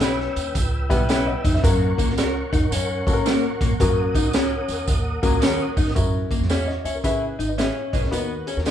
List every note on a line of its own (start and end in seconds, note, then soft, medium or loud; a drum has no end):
0.00 0.25 B1 medium
0.00 0.17 B3 medium
0.00 0.52 C#4 medium
0.00 0.18 E4 medium
0.00 0.18 G4 medium
0.00 1.60 B4 medium
0.00 0.18 B4 medium
0.00 1.62 G5 medium
0.00 1.61 E6 medium
0.00 snare loud
0.00 closed hi-hat medium
0.00 tambourine medium
0.20 snare soft
0.36 0.51 D#2 medium
0.36 closed hi-hat medium
0.36 tambourine medium
0.55 0.90 C#2 loud
0.55 kick medium
0.55 closed hi-hat loud
0.55 tambourine medium
0.89 1.33 B1 medium
0.89 1.51 G3 medium
0.89 1.51 B3 medium
0.89 1.01 B3 medium
0.89 1.51 E4 medium
0.89 1.51 G4 medium
0.89 1.51 B4 loud
0.89 kick medium
0.89 closed hi-hat medium
0.89 tambourine medium
1.09 1.25 B3 medium
1.09 1.29 C#4 medium
1.09 1.26 E4 medium
1.09 1.26 G4 loud
1.09 1.26 B4 loud
1.09 1.27 E5 medium
1.09 1.26 G5 medium
1.09 snare loud
1.09 closed hi-hat loud
1.09 tambourine loud
1.27 1.53 D#5 medium
1.27 1.53 F#5 medium
1.44 1.59 F2 medium
1.44 1.55 D#4 medium
1.44 kick loud
1.44 closed hi-hat medium
1.44 tambourine medium
1.54 1.80 C#5 medium
1.54 1.80 E5 medium
1.54 snare soft
1.63 1.91 F#2 loud
1.63 2.55 F#3 medium
1.63 2.56 A#3 medium
1.63 2.55 C#4 medium
1.63 2.56 F#4 medium
1.63 5.91 A#4 medium
1.63 2.56 A#4 loud
1.63 5.92 F#5 medium
1.63 3.77 C#6 medium
1.63 kick loud
1.63 closed hi-hat loud
1.63 tambourine loud
1.98 2.41 C#2 loud
1.98 2.09 A#3 medium
1.98 kick medium
1.98 closed hi-hat medium
1.98 tambourine medium
2.10 snare soft
2.18 2.34 C#4 medium
2.18 2.34 F#4 medium
2.18 2.34 A#4 loud
2.18 2.34 C#5 medium
2.18 snare loud
2.18 closed hi-hat medium
2.18 tambourine loud
2.53 2.68 E2 medium
2.53 2.63 D#4 medium
2.53 kick loud
2.53 closed hi-hat medium
2.53 tambourine medium
2.71 2.99 F#2 medium
2.71 3.23 C#4 medium
2.71 closed hi-hat loud
2.71 tambourine loud
3.07 3.35 G#2 medium
3.07 3.68 F#3 medium
3.07 3.68 A#3 medium
3.07 3.68 C#4 medium
3.07 3.68 F#4 medium
3.07 3.11 A4 medium
3.07 kick loud
3.07 closed hi-hat medium
3.07 tambourine medium
3.13 3.71 A#4 loud
3.26 3.45 A#3 loud
3.26 3.42 C#4 loud
3.26 3.42 F#4 loud
3.26 3.42 A#4 loud
3.26 3.43 C#5 loud
3.26 snare loud
3.26 closed hi-hat medium
3.26 tambourine medium
3.61 3.68 A#2 medium
3.61 3.72 A#3 medium
3.61 kick loud
3.61 closed hi-hat medium
3.61 tambourine medium
3.70 3.77 F2 medium
3.80 4.08 F#2 loud
3.80 4.72 F#3 medium
3.80 4.72 A#3 medium
3.80 4.72 C#4 medium
3.80 4.72 F#4 medium
3.80 4.72 A#4 loud
3.80 5.94 D#6 medium
3.80 kick loud
3.80 closed hi-hat loud
3.80 tambourine medium
4.15 4.57 C#2 medium
4.15 4.26 D#4 medium
4.15 kick medium
4.15 closed hi-hat medium
4.15 tambourine medium
4.33 4.85 C#4 medium
4.33 4.50 C#4 medium
4.33 4.50 F#4 medium
4.33 4.50 A#4 medium
4.33 4.51 C#5 medium
4.33 snare loud
4.33 closed hi-hat medium
4.33 tambourine loud
4.68 4.83 E2 medium
4.68 closed hi-hat medium
4.68 tambourine medium
4.88 5.15 D#2 loud
4.88 kick medium
4.88 closed hi-hat loud
4.88 tambourine loud
5.23 5.38 C#2 medium
5.23 5.84 F#3 loud
5.23 5.84 A#3 medium
5.23 5.34 A#3 medium
5.23 5.84 C#4 medium
5.23 5.84 F#4 medium
5.23 5.84 A#4 loud
5.23 kick loud
5.23 closed hi-hat medium
5.23 tambourine medium
5.42 5.56 D#2 medium
5.42 5.58 C#4 medium
5.42 5.62 C#4 medium
5.42 5.58 F#4 medium
5.42 5.58 A#4 medium
5.42 5.58 C#5 loud
5.42 snare loud
5.42 closed hi-hat loud
5.42 tambourine loud
5.77 5.84 E2 medium
5.77 5.88 D#4 medium
5.77 kick loud
5.77 open hi-hat medium
5.77 tambourine medium
5.86 5.93 F#2 medium
5.86 snare soft
5.95 6.24 F#2 medium
5.95 6.88 C#4 medium
5.95 6.88 E4 medium
5.95 6.88 F#4 medium
5.95 6.31 A#4 medium
5.95 kick loud
5.95 closed hi-hat loud
5.95 tambourine medium
6.31 6.42 A#3 medium
6.31 kick medium
6.31 closed hi-hat medium
6.31 tambourine medium
6.40 6.49 F#2 medium
6.40 snare soft
6.49 6.77 E2 medium
6.49 6.66 A#3 medium
6.49 6.70 C#4 medium
6.49 6.66 E4 medium
6.49 6.66 F#4 medium
6.49 6.67 C#5 medium
6.49 snare loud
6.49 closed hi-hat medium
6.49 tambourine medium
6.67 6.84 D#5 medium
6.67 snare soft
6.84 7.00 C#2 medium
6.84 6.96 C#4 medium
6.84 6.93 C#5 medium
6.84 6.94 E5 medium
6.84 closed hi-hat medium
6.84 tambourine soft
6.95 7.21 A#4 medium
6.95 7.20 C#5 medium
7.04 7.32 C#3 loud
7.04 7.32 C#4 medium
7.04 7.32 E4 medium
7.04 7.24 E4 medium
7.04 7.32 G#4 medium
7.04 7.32 B4 medium
7.04 kick medium
7.04 closed hi-hat medium
7.04 tambourine loud
7.39 7.68 G#1 medium
7.39 7.50 D#4 medium
7.39 closed hi-hat medium
7.39 tambourine medium
7.49 7.58 B4 soft
7.49 7.58 D#5 medium
7.58 7.74 B3 medium
7.58 8.09 C#4 medium
7.58 7.74 E4 medium
7.58 7.75 G#4 medium
7.58 7.92 C#5 medium
7.58 7.75 C#5 medium
7.58 7.91 E5 medium
7.58 snare loud
7.58 closed hi-hat medium
7.58 tambourine medium
7.93 8.01 B1 medium
7.93 8.00 B3 medium
7.93 8.00 E4 medium
7.93 8.01 G#4 medium
7.93 8.02 B4 medium
7.93 8.01 C#5 medium
7.93 8.02 D#5 medium
7.93 kick medium
7.93 closed hi-hat medium
7.93 tambourine medium
8.02 8.10 D2 medium
8.02 8.10 A#4 medium
8.02 8.28 C#5 medium
8.02 snare soft
8.11 8.40 D#2 loud
8.11 8.32 B3 medium
8.11 8.71 D#4 medium
8.11 8.47 F#4 medium
8.11 8.47 A#4 medium
8.11 8.47 B4 loud
8.11 closed hi-hat loud
8.11 tambourine medium
8.47 8.58 C#4 medium
8.47 8.56 G#4 medium
8.47 closed hi-hat medium
8.47 tambourine medium
8.57 8.64 D#2 medium
8.57 8.66 F#4 soft
8.57 8.65 A#4 medium
8.57 snare soft
8.66 8.71 A#1 medium
8.66 8.71 B3 medium
8.66 8.71 D#4 medium
8.66 8.71 F#4 medium
8.66 8.71 A#4 medium
8.66 8.71 C#5 medium
8.66 snare loud
8.66 closed hi-hat medium
8.66 tambourine medium